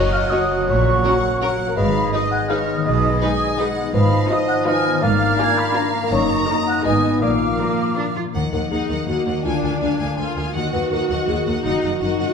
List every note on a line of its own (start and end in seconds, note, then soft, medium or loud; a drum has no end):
0.00 0.70 F#2 medium
0.00 0.58 C#3 medium
0.00 1.73 F#3 medium
0.00 0.39 C#4 medium
0.00 0.94 F#4 soft
0.00 0.30 A#4 medium
0.00 0.12 C#5 medium
0.00 0.64 D#5 medium
0.00 1.73 F#5 medium
0.00 0.13 C#6 medium
0.04 0.21 C#5 medium
0.12 0.30 F5 medium
0.12 1.22 F#5 medium
0.12 0.30 F6 medium
0.22 1.12 C#5 medium
0.31 0.45 F#3 medium
0.31 0.40 C#4 medium
0.31 0.40 F#4 medium
0.31 0.45 F#4 medium
0.31 1.03 A#4 medium
0.31 0.40 C#5 medium
0.31 0.65 D#5 medium
0.31 0.68 D#6 medium
0.40 0.85 C#4 soft
0.50 1.57 A#3 medium
0.59 0.69 C#3 medium
0.68 0.99 A#1 medium
0.68 1.79 A#2 medium
0.68 0.98 A#2 medium
0.68 1.04 C#5 medium
0.68 1.46 C#5 medium
0.68 1.48 C#6 medium
0.77 1.67 F#3 soft
0.86 1.48 C#4 medium
0.96 1.79 F#4 soft
1.04 1.18 F#3 medium
1.04 1.13 C#4 medium
1.04 1.18 F#4 medium
1.04 1.13 F#4 medium
1.04 1.12 A#4 medium
1.04 1.40 A#4 medium
1.04 1.40 F#5 medium
1.14 1.31 C#5 medium
1.23 1.79 F#5 medium
1.32 1.79 C#5 medium
1.41 1.54 F#3 medium
1.41 1.50 C#4 medium
1.41 1.54 F#4 medium
1.41 1.50 F#4 medium
1.41 1.78 A#4 medium
1.41 1.49 A#4 medium
1.41 1.76 F#5 medium
1.50 1.78 C#4 medium
1.58 1.78 A#3 medium
1.68 1.79 F#3 soft
1.68 1.77 A#4 medium
1.68 1.76 A#5 medium
1.77 2.08 G#1 medium
1.77 2.07 G#2 medium
1.77 2.87 G#2 medium
1.77 3.90 G#3 medium
1.77 2.11 B4 medium
1.77 3.91 D#5 medium
1.77 2.13 F5 medium
1.77 2.14 B5 medium
1.86 2.75 D#3 medium
1.95 2.58 D#4 soft
2.05 3.11 G#4 soft
2.13 2.26 G#3 medium
2.13 2.26 D#4 medium
2.13 2.22 D#4 medium
2.13 2.22 G#4 medium
2.13 2.21 B4 medium
2.13 2.49 B4 medium
2.13 2.30 D#5 medium
2.13 2.49 D#5 medium
2.13 2.31 D#6 medium
2.23 2.39 D#5 medium
2.31 2.48 F#5 medium
2.31 3.38 G#5 medium
2.31 2.49 F#6 medium
2.41 3.28 D#5 medium
2.49 2.63 G#3 medium
2.49 2.63 D#4 medium
2.49 2.58 D#4 medium
2.49 2.58 G#4 medium
2.49 2.58 B4 medium
2.49 3.20 B4 medium
2.49 2.85 C#5 medium
2.49 2.83 F5 medium
2.49 2.85 F6 medium
2.59 3.03 D#4 soft
2.67 3.74 B3 medium
2.77 2.87 D#3 medium
2.86 3.16 B1 medium
2.86 3.96 B2 medium
2.86 3.16 B2 medium
2.86 3.21 B4 medium
2.86 3.63 D#5 medium
2.86 3.66 D#6 medium
2.95 3.84 G#3 soft
3.04 3.65 D#4 medium
3.12 6.13 G#4 soft
3.21 3.35 G#3 medium
3.21 3.35 D#4 medium
3.21 3.30 D#4 medium
3.21 3.30 G#4 medium
3.21 3.56 B4 medium
3.21 3.30 B4 medium
3.21 3.58 G#5 medium
3.30 3.47 D#5 medium
3.39 6.13 G#5 medium
3.48 4.38 D#5 medium
3.57 3.71 G#3 medium
3.57 3.66 D#4 medium
3.57 3.71 D#4 medium
3.57 3.66 G#4 medium
3.57 4.29 B4 medium
3.57 3.65 B4 medium
3.57 3.95 F#5 medium
3.67 4.10 D#4 medium
3.75 4.83 B3 medium
3.85 5.11 G#3 medium
3.94 4.23 G#1 medium
3.94 5.02 G#2 medium
3.94 4.23 G#2 medium
3.94 5.05 F3 medium
3.94 4.28 B4 medium
3.94 5.05 D#5 medium
3.94 4.30 F5 medium
3.94 4.28 B5 medium
4.03 4.93 D#3 medium
4.11 4.74 D#4 medium
4.20 6.13 F4 medium
4.29 4.43 F3 medium
4.29 4.43 D#4 medium
4.29 4.57 D#4 medium
4.29 4.57 F4 medium
4.29 4.65 B4 medium
4.29 4.57 B4 medium
4.29 4.47 D#5 medium
4.29 4.67 D#5 medium
4.29 4.37 D#6 medium
4.39 4.56 D#5 medium
4.48 6.13 F5 medium
4.48 4.65 F#5 medium
4.48 4.54 F#6 medium
4.57 5.04 D#5 medium
4.66 4.80 F3 medium
4.66 4.80 D#4 medium
4.66 4.94 D#4 medium
4.66 4.94 F4 medium
4.66 4.93 B4 medium
4.66 5.04 B4 medium
4.66 5.00 F5 medium
4.66 5.03 G#5 medium
4.66 5.02 F6 medium
4.76 5.04 D#4 medium
4.85 5.04 B3 medium
4.94 5.04 D#3 medium
5.03 5.32 G#1 medium
5.03 5.32 G#2 medium
5.03 6.13 G#2 medium
5.03 6.57 A#3 medium
5.03 5.84 D5 medium
5.03 5.37 F5 medium
5.03 6.10 F5 loud
5.03 5.38 F6 medium
5.12 6.02 G#3 medium
5.21 5.38 D4 medium
5.30 5.74 A#4 medium
5.39 5.52 A#3 medium
5.39 5.52 D4 medium
5.39 5.83 D4 medium
5.39 5.66 D4 medium
5.39 5.66 F4 medium
5.39 5.67 A#4 medium
5.39 5.56 G#5 medium
5.39 5.57 G#6 loud
5.49 5.66 D5 medium
5.57 6.65 A#5 medium
5.57 5.74 B5 medium
5.57 5.76 B5 loud
5.67 6.13 D5 medium
5.75 5.89 A#3 medium
5.75 6.03 D4 medium
5.75 5.89 D4 medium
5.75 6.03 F4 medium
5.75 6.38 A#4 medium
5.75 6.03 A#4 medium
5.75 6.02 A#5 medium
5.75 6.01 A#5 medium
5.85 6.13 D4 medium
5.94 6.87 A#3 medium
6.03 6.14 G#3 medium
6.03 6.12 A#4 medium
6.03 6.08 A#5 medium
6.12 6.41 F#1 medium
6.12 6.40 F#2 medium
6.12 6.87 F#2 medium
6.12 6.46 A#3 medium
6.12 6.46 D#4 medium
6.12 6.46 C#5 medium
6.12 7.24 D#5 medium
6.12 6.85 A#5 medium
6.12 6.48 C#6 medium
6.22 6.87 F#3 soft
6.31 6.48 D#4 medium
6.39 6.87 A#4 soft
6.49 6.85 A#3 medium
6.49 6.85 D#4 medium
6.49 7.02 D#4 medium
6.49 6.76 D#4 medium
6.49 6.76 A#4 medium
6.49 6.66 D#5 medium
6.49 6.67 D#6 medium
6.57 6.74 D#5 medium
6.66 6.84 F#5 medium
6.66 6.86 A#5 medium
6.66 6.85 F#6 medium
6.75 7.24 D#5 medium
6.84 7.15 G#1 medium
6.84 7.24 G#2 medium
6.84 7.15 G#2 medium
6.84 7.24 B3 medium
6.84 7.22 B3 medium
6.84 7.13 D#4 medium
6.84 7.22 D#4 medium
6.84 7.13 G#4 medium
6.84 7.13 B4 medium
6.84 7.20 D#5 medium
6.84 7.21 G#5 medium
6.84 7.21 D#6 medium
6.94 7.24 D#3 soft
7.04 7.24 D#4 soft
7.13 7.24 B4 soft
7.22 7.52 A#1 medium
7.22 8.36 A#2 medium
7.22 7.52 A#2 medium
7.22 8.16 A#3 medium
7.22 8.17 A#3 medium
7.22 8.16 F4 medium
7.22 8.13 D5 medium
7.22 8.14 F5 medium
7.22 8.16 F5 medium
7.22 8.16 D6 medium
7.31 8.14 F3 soft
7.41 7.58 A#4 soft
7.60 7.95 A#3 medium
7.60 7.88 A#3 medium
7.60 7.88 F4 medium
7.60 7.96 A#4 medium
7.60 7.88 A#4 medium
7.69 7.87 A#5 soft
7.78 8.36 F5 medium
7.88 11.66 A#5 soft
7.97 8.26 A#3 medium
7.97 8.05 D4 medium
7.97 8.26 F4 soft
7.97 8.25 A#4 medium
7.97 8.70 A#4 soft
8.06 8.24 A#3 soft
8.16 8.36 F3 soft
8.16 8.23 F4 medium
8.26 11.66 A#3 soft
8.34 8.42 D#2 medium
8.34 8.43 D#2 medium
8.34 9.47 D#3 medium
8.34 8.53 A#3 soft
8.34 8.52 D#5 soft
8.34 8.52 F#5 medium
8.34 triangle soft
8.53 8.60 D#2 soft
8.53 8.61 D#2 soft
8.53 8.88 F#3 soft
8.53 8.71 A#3 soft
8.53 8.70 A#4 medium
8.53 8.71 D#5 soft
8.53 8.70 F#5 soft
8.71 8.79 D#2 medium
8.71 8.79 D#2 soft
8.71 8.88 A#3 soft
8.71 9.06 D#4 medium
8.71 9.06 G#4 medium
8.71 9.81 A#4 soft
8.71 8.89 D#5 medium
8.71 8.88 F#5 soft
8.89 8.97 D#2 soft
8.89 8.98 D#2 soft
8.89 9.26 F#3 soft
8.89 9.07 A#3 soft
8.89 9.07 D#5 soft
8.89 9.07 F#5 soft
9.08 9.15 D#2 medium
9.08 9.16 D#2 soft
9.08 9.26 A#3 medium
9.08 9.45 A#3 medium
9.08 9.43 F#4 medium
9.08 9.47 F#4 soft
9.08 9.25 D#5 soft
9.08 9.26 F#5 soft
9.26 9.34 D#2 soft
9.26 9.35 D#2 soft
9.26 9.47 F#3 soft
9.26 9.44 A#3 soft
9.26 9.45 D#5 soft
9.26 9.45 F#5 soft
9.45 9.52 D2 medium
9.45 9.53 D2 medium
9.45 10.57 D3 soft
9.45 9.62 A#3 medium
9.45 10.17 D4 medium
9.45 9.80 F4 medium
9.45 9.62 F5 soft
9.45 9.63 G#5 medium
9.63 9.71 D2 soft
9.63 9.72 D2 soft
9.63 9.99 G#3 soft
9.63 9.81 A#3 soft
9.63 9.81 F5 soft
9.63 9.81 G#5 soft
9.82 9.89 D2 soft
9.82 9.90 D2 soft
9.82 10.00 A#3 medium
9.82 10.33 D4 medium
9.82 10.90 A#4 soft
9.82 10.00 F5 medium
9.82 9.98 G#5 soft
9.99 10.07 D2 medium
9.99 10.08 D2 soft
9.99 10.36 G#3 soft
9.99 10.19 A#3 soft
9.99 10.18 F5 soft
9.99 10.17 G#5 soft
10.18 10.26 D2 medium
10.18 10.26 D2 soft
10.18 10.37 A#3 soft
10.18 10.54 F4 medium
10.18 10.57 G#4 soft
10.18 10.37 F5 soft
10.18 10.36 G#5 soft
10.36 10.44 D2 soft
10.36 10.45 D2 medium
10.36 10.57 G#3 soft
10.36 10.55 A#3 soft
10.36 10.55 F5 medium
10.36 10.55 G#5 soft
10.55 10.62 D#2 soft
10.55 10.63 D#2 medium
10.55 11.66 D#3 soft
10.55 10.73 A#3 medium
10.55 11.63 F#4 medium
10.55 10.72 D#5 medium
10.55 10.72 F#5 medium
10.73 10.80 D#2 soft
10.73 10.81 D#2 soft
10.73 11.09 F#3 soft
10.73 10.90 A#3 soft
10.73 10.90 B4 medium
10.73 10.90 D#5 soft
10.73 10.90 F#5 soft
10.91 10.98 D#2 medium
10.91 10.99 D#2 soft
10.91 11.09 A#3 medium
10.91 12.33 A#4 soft
10.91 11.25 A#4 medium
10.91 11.09 D#5 soft
10.91 11.08 F#5 soft
11.09 11.17 D#2 medium
11.09 11.18 D#2 soft
11.09 11.45 F#3 soft
11.09 11.27 A#3 soft
11.09 11.27 D#5 soft
11.09 11.26 F#5 medium
11.27 11.35 D#2 medium
11.27 11.36 D#2 medium
11.27 11.45 A#3 medium
11.27 12.33 F#4 soft
11.27 11.62 G#4 medium
11.27 11.46 D#5 soft
11.27 11.44 F#5 soft
11.46 11.53 D#2 medium
11.46 11.54 D#2 medium
11.46 11.81 F#3 soft
11.46 11.64 A#3 medium
11.46 11.64 D#5 medium
11.46 11.63 F#5 soft
11.64 11.72 F#1 medium
11.64 12.33 F#2 medium
11.64 11.72 F#2 medium
11.64 11.82 A#3 medium
11.64 12.00 D#4 medium
11.64 11.98 F#4 medium
11.64 11.82 D#5 medium
11.64 11.80 F#5 medium
11.82 11.90 F#1 medium
11.82 11.90 F#2 medium
11.82 12.18 F#3 soft
11.82 12.00 A#3 soft
11.82 12.00 D#5 soft
11.82 11.99 F#5 soft
12.00 12.08 F#1 soft
12.00 12.08 F#2 medium
12.00 12.18 A#3 medium
12.00 12.33 D#4 soft
12.00 12.33 D#4 medium
12.00 12.33 F#4 medium
12.00 12.18 D#5 medium
12.00 12.18 F#5 soft
12.19 12.27 F#1 soft
12.19 12.26 F#2 medium
12.19 12.33 F#3 soft
12.19 12.33 A#3 soft
12.19 12.33 D#5 soft
12.19 12.33 F#5 soft